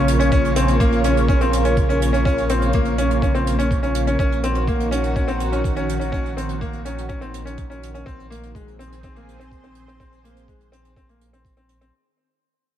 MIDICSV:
0, 0, Header, 1, 6, 480
1, 0, Start_track
1, 0, Tempo, 483871
1, 316, Time_signature, 4, 2, 24, 8
1, 12674, End_track
2, 0, Start_track
2, 0, Title_t, "Analog synth pad"
2, 0, Program_c, 0, 89
2, 0, Note_on_c, 0, 49, 88
2, 0, Note_on_c, 0, 58, 75
2, 0, Note_on_c, 0, 65, 74
2, 0, Note_on_c, 0, 73, 81
2, 4163, Note_off_c, 0, 49, 0
2, 4163, Note_off_c, 0, 65, 0
2, 4175, Note_on_c, 0, 51, 74
2, 4241, Note_on_c, 0, 66, 82
2, 8003, Note_off_c, 0, 73, 0
2, 8157, Note_on_c, 0, 60, 74
2, 8298, Note_on_c, 0, 68, 67
2, 8614, Note_off_c, 0, 66, 0
2, 8622, Note_off_c, 0, 58, 0
2, 8738, Note_on_c, 0, 72, 86
2, 11840, Note_off_c, 0, 60, 0
2, 11845, Note_off_c, 0, 68, 0
2, 11846, Note_off_c, 0, 51, 0
2, 11846, Note_off_c, 0, 72, 0
2, 12674, End_track
3, 0, Start_track
3, 0, Title_t, "Grand piano"
3, 0, Program_c, 1, 0
3, 0, Note_on_c, 1, 61, 69
3, 128, Note_off_c, 1, 61, 0
3, 194, Note_on_c, 1, 61, 73
3, 280, Note_off_c, 1, 61, 0
3, 319, Note_on_c, 1, 61, 89
3, 489, Note_off_c, 1, 61, 0
3, 558, Note_on_c, 1, 60, 76
3, 728, Note_off_c, 1, 60, 0
3, 794, Note_on_c, 1, 58, 81
3, 966, Note_off_c, 1, 58, 0
3, 1038, Note_on_c, 1, 61, 70
3, 1208, Note_off_c, 1, 61, 0
3, 1278, Note_on_c, 1, 61, 79
3, 1363, Note_off_c, 1, 61, 0
3, 1399, Note_on_c, 1, 60, 68
3, 1569, Note_off_c, 1, 60, 0
3, 1636, Note_on_c, 1, 61, 68
3, 1807, Note_off_c, 1, 61, 0
3, 1877, Note_on_c, 1, 61, 65
3, 2047, Note_off_c, 1, 61, 0
3, 2111, Note_on_c, 1, 61, 70
3, 2199, Note_off_c, 1, 61, 0
3, 2235, Note_on_c, 1, 61, 86
3, 2406, Note_off_c, 1, 61, 0
3, 2478, Note_on_c, 1, 60, 72
3, 2648, Note_off_c, 1, 60, 0
3, 2721, Note_on_c, 1, 58, 79
3, 2890, Note_off_c, 1, 58, 0
3, 2959, Note_on_c, 1, 61, 71
3, 3129, Note_off_c, 1, 61, 0
3, 3195, Note_on_c, 1, 61, 70
3, 3281, Note_off_c, 1, 61, 0
3, 3319, Note_on_c, 1, 60, 69
3, 3489, Note_off_c, 1, 60, 0
3, 3558, Note_on_c, 1, 61, 69
3, 3728, Note_off_c, 1, 61, 0
3, 3797, Note_on_c, 1, 61, 64
3, 3968, Note_off_c, 1, 61, 0
3, 4039, Note_on_c, 1, 61, 63
3, 4123, Note_off_c, 1, 61, 0
3, 4159, Note_on_c, 1, 61, 78
3, 4329, Note_off_c, 1, 61, 0
3, 4401, Note_on_c, 1, 60, 69
3, 4570, Note_off_c, 1, 60, 0
3, 4641, Note_on_c, 1, 58, 74
3, 4811, Note_off_c, 1, 58, 0
3, 4873, Note_on_c, 1, 61, 71
3, 5045, Note_off_c, 1, 61, 0
3, 5118, Note_on_c, 1, 61, 69
3, 5203, Note_off_c, 1, 61, 0
3, 5235, Note_on_c, 1, 60, 67
3, 5406, Note_off_c, 1, 60, 0
3, 5479, Note_on_c, 1, 61, 64
3, 5649, Note_off_c, 1, 61, 0
3, 5718, Note_on_c, 1, 61, 69
3, 5888, Note_off_c, 1, 61, 0
3, 5948, Note_on_c, 1, 61, 65
3, 6036, Note_off_c, 1, 61, 0
3, 6071, Note_on_c, 1, 61, 84
3, 6244, Note_off_c, 1, 61, 0
3, 6318, Note_on_c, 1, 60, 68
3, 6488, Note_off_c, 1, 60, 0
3, 6558, Note_on_c, 1, 58, 79
3, 6728, Note_off_c, 1, 58, 0
3, 6798, Note_on_c, 1, 61, 70
3, 6968, Note_off_c, 1, 61, 0
3, 7032, Note_on_c, 1, 61, 75
3, 7119, Note_off_c, 1, 61, 0
3, 7155, Note_on_c, 1, 60, 66
3, 7326, Note_off_c, 1, 60, 0
3, 7394, Note_on_c, 1, 61, 65
3, 7566, Note_off_c, 1, 61, 0
3, 7638, Note_on_c, 1, 61, 66
3, 7808, Note_off_c, 1, 61, 0
3, 7880, Note_on_c, 1, 61, 66
3, 7964, Note_off_c, 1, 61, 0
3, 7995, Note_on_c, 1, 60, 79
3, 8167, Note_off_c, 1, 60, 0
3, 8237, Note_on_c, 1, 58, 75
3, 8407, Note_off_c, 1, 58, 0
3, 8479, Note_on_c, 1, 56, 72
3, 8649, Note_off_c, 1, 56, 0
3, 8721, Note_on_c, 1, 60, 65
3, 8890, Note_off_c, 1, 60, 0
3, 8967, Note_on_c, 1, 60, 72
3, 9049, Note_off_c, 1, 60, 0
3, 9085, Note_on_c, 1, 58, 67
3, 9253, Note_off_c, 1, 58, 0
3, 9320, Note_on_c, 1, 60, 63
3, 9490, Note_off_c, 1, 60, 0
3, 9560, Note_on_c, 1, 60, 65
3, 9730, Note_off_c, 1, 60, 0
3, 9802, Note_on_c, 1, 60, 63
3, 9885, Note_off_c, 1, 60, 0
3, 9920, Note_on_c, 1, 60, 79
3, 10089, Note_off_c, 1, 60, 0
3, 10160, Note_on_c, 1, 58, 64
3, 10329, Note_off_c, 1, 58, 0
3, 10398, Note_on_c, 1, 56, 70
3, 10568, Note_off_c, 1, 56, 0
3, 10635, Note_on_c, 1, 60, 68
3, 10806, Note_off_c, 1, 60, 0
3, 10879, Note_on_c, 1, 60, 71
3, 10963, Note_off_c, 1, 60, 0
3, 11001, Note_on_c, 1, 58, 64
3, 11170, Note_off_c, 1, 58, 0
3, 11242, Note_on_c, 1, 60, 62
3, 11411, Note_off_c, 1, 60, 0
3, 11477, Note_on_c, 1, 60, 58
3, 11648, Note_off_c, 1, 60, 0
3, 11718, Note_on_c, 1, 60, 64
3, 11803, Note_off_c, 1, 60, 0
3, 12674, End_track
4, 0, Start_track
4, 0, Title_t, "Sub bass"
4, 0, Program_c, 2, 38
4, 0, Note_on_c, 2, 34, 87
4, 4133, Note_off_c, 2, 34, 0
4, 4155, Note_on_c, 2, 34, 77
4, 7972, Note_off_c, 2, 34, 0
4, 8004, Note_on_c, 2, 34, 86
4, 11816, Note_off_c, 2, 34, 0
4, 12674, End_track
5, 0, Start_track
5, 0, Title_t, "Downlifter"
5, 0, Program_c, 3, 103
5, 0, Note_on_c, 3, 60, 66
5, 319, Note_off_c, 3, 60, 0
5, 12674, End_track
6, 0, Start_track
6, 0, Title_t, "Drums"
6, 79, Note_on_c, 9, 42, 80
6, 178, Note_off_c, 9, 42, 0
6, 199, Note_on_c, 9, 42, 44
6, 298, Note_off_c, 9, 42, 0
6, 316, Note_on_c, 9, 42, 53
6, 317, Note_on_c, 9, 36, 102
6, 416, Note_off_c, 9, 36, 0
6, 416, Note_off_c, 9, 42, 0
6, 444, Note_on_c, 9, 42, 41
6, 543, Note_off_c, 9, 42, 0
6, 554, Note_on_c, 9, 42, 85
6, 653, Note_off_c, 9, 42, 0
6, 674, Note_on_c, 9, 42, 49
6, 774, Note_off_c, 9, 42, 0
6, 794, Note_on_c, 9, 42, 52
6, 795, Note_on_c, 9, 36, 96
6, 894, Note_off_c, 9, 36, 0
6, 894, Note_off_c, 9, 42, 0
6, 916, Note_on_c, 9, 42, 34
6, 1015, Note_off_c, 9, 42, 0
6, 1032, Note_on_c, 9, 42, 75
6, 1131, Note_off_c, 9, 42, 0
6, 1161, Note_on_c, 9, 42, 43
6, 1260, Note_off_c, 9, 42, 0
6, 1275, Note_on_c, 9, 36, 100
6, 1280, Note_on_c, 9, 42, 48
6, 1374, Note_off_c, 9, 36, 0
6, 1379, Note_off_c, 9, 42, 0
6, 1397, Note_on_c, 9, 42, 39
6, 1496, Note_off_c, 9, 42, 0
6, 1519, Note_on_c, 9, 42, 71
6, 1618, Note_off_c, 9, 42, 0
6, 1634, Note_on_c, 9, 42, 48
6, 1733, Note_off_c, 9, 42, 0
6, 1753, Note_on_c, 9, 42, 54
6, 1756, Note_on_c, 9, 36, 99
6, 1852, Note_off_c, 9, 42, 0
6, 1855, Note_off_c, 9, 36, 0
6, 1881, Note_on_c, 9, 42, 36
6, 1980, Note_off_c, 9, 42, 0
6, 2001, Note_on_c, 9, 42, 79
6, 2100, Note_off_c, 9, 42, 0
6, 2121, Note_on_c, 9, 42, 44
6, 2220, Note_off_c, 9, 42, 0
6, 2236, Note_on_c, 9, 36, 101
6, 2248, Note_on_c, 9, 42, 47
6, 2335, Note_off_c, 9, 36, 0
6, 2347, Note_off_c, 9, 42, 0
6, 2360, Note_on_c, 9, 42, 35
6, 2459, Note_off_c, 9, 42, 0
6, 2473, Note_on_c, 9, 42, 80
6, 2572, Note_off_c, 9, 42, 0
6, 2596, Note_on_c, 9, 42, 44
6, 2695, Note_off_c, 9, 42, 0
6, 2707, Note_on_c, 9, 42, 54
6, 2716, Note_on_c, 9, 36, 97
6, 2807, Note_off_c, 9, 42, 0
6, 2815, Note_off_c, 9, 36, 0
6, 2827, Note_on_c, 9, 42, 37
6, 2926, Note_off_c, 9, 42, 0
6, 2956, Note_on_c, 9, 42, 77
6, 3055, Note_off_c, 9, 42, 0
6, 3082, Note_on_c, 9, 42, 43
6, 3181, Note_off_c, 9, 42, 0
6, 3197, Note_on_c, 9, 36, 96
6, 3201, Note_on_c, 9, 42, 51
6, 3296, Note_off_c, 9, 36, 0
6, 3300, Note_off_c, 9, 42, 0
6, 3321, Note_on_c, 9, 42, 41
6, 3420, Note_off_c, 9, 42, 0
6, 3441, Note_on_c, 9, 42, 75
6, 3540, Note_off_c, 9, 42, 0
6, 3564, Note_on_c, 9, 42, 46
6, 3663, Note_off_c, 9, 42, 0
6, 3678, Note_on_c, 9, 36, 104
6, 3682, Note_on_c, 9, 42, 50
6, 3777, Note_off_c, 9, 36, 0
6, 3781, Note_off_c, 9, 42, 0
6, 3799, Note_on_c, 9, 42, 34
6, 3899, Note_off_c, 9, 42, 0
6, 3916, Note_on_c, 9, 42, 70
6, 4015, Note_off_c, 9, 42, 0
6, 4038, Note_on_c, 9, 42, 46
6, 4137, Note_off_c, 9, 42, 0
6, 4157, Note_on_c, 9, 36, 94
6, 4160, Note_on_c, 9, 42, 50
6, 4256, Note_off_c, 9, 36, 0
6, 4259, Note_off_c, 9, 42, 0
6, 4285, Note_on_c, 9, 42, 35
6, 4385, Note_off_c, 9, 42, 0
6, 4399, Note_on_c, 9, 42, 74
6, 4498, Note_off_c, 9, 42, 0
6, 4514, Note_on_c, 9, 42, 41
6, 4613, Note_off_c, 9, 42, 0
6, 4638, Note_on_c, 9, 36, 89
6, 4641, Note_on_c, 9, 42, 50
6, 4737, Note_off_c, 9, 36, 0
6, 4740, Note_off_c, 9, 42, 0
6, 4762, Note_on_c, 9, 42, 40
6, 4861, Note_off_c, 9, 42, 0
6, 4882, Note_on_c, 9, 42, 75
6, 4981, Note_off_c, 9, 42, 0
6, 4996, Note_on_c, 9, 42, 49
6, 5096, Note_off_c, 9, 42, 0
6, 5118, Note_on_c, 9, 36, 83
6, 5119, Note_on_c, 9, 42, 45
6, 5217, Note_off_c, 9, 36, 0
6, 5218, Note_off_c, 9, 42, 0
6, 5238, Note_on_c, 9, 42, 36
6, 5337, Note_off_c, 9, 42, 0
6, 5357, Note_on_c, 9, 42, 65
6, 5456, Note_off_c, 9, 42, 0
6, 5480, Note_on_c, 9, 42, 42
6, 5580, Note_off_c, 9, 42, 0
6, 5598, Note_on_c, 9, 36, 95
6, 5602, Note_on_c, 9, 42, 50
6, 5697, Note_off_c, 9, 36, 0
6, 5701, Note_off_c, 9, 42, 0
6, 5717, Note_on_c, 9, 42, 37
6, 5816, Note_off_c, 9, 42, 0
6, 5846, Note_on_c, 9, 42, 74
6, 5945, Note_off_c, 9, 42, 0
6, 5960, Note_on_c, 9, 42, 48
6, 6059, Note_off_c, 9, 42, 0
6, 6078, Note_on_c, 9, 36, 91
6, 6086, Note_on_c, 9, 42, 48
6, 6177, Note_off_c, 9, 36, 0
6, 6186, Note_off_c, 9, 42, 0
6, 6205, Note_on_c, 9, 42, 30
6, 6304, Note_off_c, 9, 42, 0
6, 6326, Note_on_c, 9, 42, 65
6, 6425, Note_off_c, 9, 42, 0
6, 6438, Note_on_c, 9, 42, 41
6, 6537, Note_off_c, 9, 42, 0
6, 6559, Note_on_c, 9, 36, 86
6, 6565, Note_on_c, 9, 42, 44
6, 6659, Note_off_c, 9, 36, 0
6, 6664, Note_off_c, 9, 42, 0
6, 6676, Note_on_c, 9, 42, 37
6, 6775, Note_off_c, 9, 42, 0
6, 6799, Note_on_c, 9, 42, 61
6, 6898, Note_off_c, 9, 42, 0
6, 6925, Note_on_c, 9, 42, 44
6, 7025, Note_off_c, 9, 42, 0
6, 7034, Note_on_c, 9, 42, 48
6, 7039, Note_on_c, 9, 36, 81
6, 7133, Note_off_c, 9, 42, 0
6, 7139, Note_off_c, 9, 36, 0
6, 7159, Note_on_c, 9, 42, 36
6, 7258, Note_off_c, 9, 42, 0
6, 7279, Note_on_c, 9, 42, 65
6, 7378, Note_off_c, 9, 42, 0
6, 7406, Note_on_c, 9, 42, 43
6, 7505, Note_off_c, 9, 42, 0
6, 7515, Note_on_c, 9, 42, 53
6, 7520, Note_on_c, 9, 36, 92
6, 7614, Note_off_c, 9, 42, 0
6, 7619, Note_off_c, 9, 36, 0
6, 7650, Note_on_c, 9, 42, 33
6, 7749, Note_off_c, 9, 42, 0
6, 7768, Note_on_c, 9, 42, 63
6, 7868, Note_off_c, 9, 42, 0
6, 7884, Note_on_c, 9, 42, 39
6, 7983, Note_off_c, 9, 42, 0
6, 8001, Note_on_c, 9, 36, 88
6, 8013, Note_on_c, 9, 42, 47
6, 8100, Note_off_c, 9, 36, 0
6, 8112, Note_off_c, 9, 42, 0
6, 8133, Note_on_c, 9, 42, 30
6, 8232, Note_off_c, 9, 42, 0
6, 8252, Note_on_c, 9, 42, 65
6, 8352, Note_off_c, 9, 42, 0
6, 8367, Note_on_c, 9, 42, 37
6, 8466, Note_off_c, 9, 42, 0
6, 8482, Note_on_c, 9, 36, 84
6, 8486, Note_on_c, 9, 42, 46
6, 8581, Note_off_c, 9, 36, 0
6, 8586, Note_off_c, 9, 42, 0
6, 8609, Note_on_c, 9, 42, 34
6, 8709, Note_off_c, 9, 42, 0
6, 8732, Note_on_c, 9, 42, 62
6, 8831, Note_off_c, 9, 42, 0
6, 8852, Note_on_c, 9, 42, 43
6, 8951, Note_off_c, 9, 42, 0
6, 8958, Note_on_c, 9, 42, 47
6, 8961, Note_on_c, 9, 36, 86
6, 9057, Note_off_c, 9, 42, 0
6, 9060, Note_off_c, 9, 36, 0
6, 9086, Note_on_c, 9, 42, 34
6, 9186, Note_off_c, 9, 42, 0
6, 9213, Note_on_c, 9, 42, 58
6, 9312, Note_off_c, 9, 42, 0
6, 9329, Note_on_c, 9, 42, 38
6, 9428, Note_off_c, 9, 42, 0
6, 9440, Note_on_c, 9, 36, 84
6, 9445, Note_on_c, 9, 42, 46
6, 9539, Note_off_c, 9, 36, 0
6, 9544, Note_off_c, 9, 42, 0
6, 9560, Note_on_c, 9, 42, 32
6, 9659, Note_off_c, 9, 42, 0
6, 9672, Note_on_c, 9, 42, 67
6, 9771, Note_off_c, 9, 42, 0
6, 9808, Note_on_c, 9, 42, 38
6, 9907, Note_off_c, 9, 42, 0
6, 9920, Note_on_c, 9, 36, 82
6, 9920, Note_on_c, 9, 42, 49
6, 10019, Note_off_c, 9, 36, 0
6, 10019, Note_off_c, 9, 42, 0
6, 10042, Note_on_c, 9, 42, 30
6, 10141, Note_off_c, 9, 42, 0
6, 10166, Note_on_c, 9, 42, 66
6, 10265, Note_off_c, 9, 42, 0
6, 10283, Note_on_c, 9, 42, 43
6, 10382, Note_off_c, 9, 42, 0
6, 10398, Note_on_c, 9, 36, 81
6, 10403, Note_on_c, 9, 42, 48
6, 10497, Note_off_c, 9, 36, 0
6, 10502, Note_off_c, 9, 42, 0
6, 10519, Note_on_c, 9, 42, 33
6, 10618, Note_off_c, 9, 42, 0
6, 10643, Note_on_c, 9, 42, 68
6, 10743, Note_off_c, 9, 42, 0
6, 10760, Note_on_c, 9, 42, 46
6, 10860, Note_off_c, 9, 42, 0
6, 10877, Note_on_c, 9, 36, 83
6, 10882, Note_on_c, 9, 42, 45
6, 10976, Note_off_c, 9, 36, 0
6, 10981, Note_off_c, 9, 42, 0
6, 11002, Note_on_c, 9, 42, 32
6, 11101, Note_off_c, 9, 42, 0
6, 11120, Note_on_c, 9, 42, 61
6, 11219, Note_off_c, 9, 42, 0
6, 11243, Note_on_c, 9, 42, 42
6, 11343, Note_off_c, 9, 42, 0
6, 11356, Note_on_c, 9, 36, 84
6, 11362, Note_on_c, 9, 42, 50
6, 11455, Note_off_c, 9, 36, 0
6, 11461, Note_off_c, 9, 42, 0
6, 11473, Note_on_c, 9, 42, 32
6, 11572, Note_off_c, 9, 42, 0
6, 11594, Note_on_c, 9, 42, 66
6, 11693, Note_off_c, 9, 42, 0
6, 11718, Note_on_c, 9, 42, 41
6, 11817, Note_off_c, 9, 42, 0
6, 12674, End_track
0, 0, End_of_file